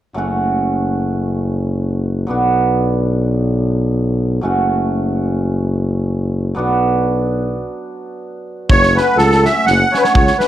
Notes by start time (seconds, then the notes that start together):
0.14 F#1 F#3 A3 C#4 F#4
2.27 B1 F#3 B3 D4 F#4
4.41 F#1 F#3 A3 C#4 F#4
6.55 B1 F#3 B3 D4 F#4
8.70 F#1 C#5, kick
8.83 snare
8.95 F#3 A3 C#4 F#4 B4, snare
9.17 C#2 A4, snare
9.32 snare
9.44 F#3 A3 C#4 F#4 E5, snare
9.66 F#1 F#5, snare
9.92 F#3 A3 C#4 F#4 C#5, snare
9.97 B4
10.02 C#5, snare
10.14 C#2 C#5, kick
10.27 snare
10.38 F#3 A3 C#4 F#4 B4, snare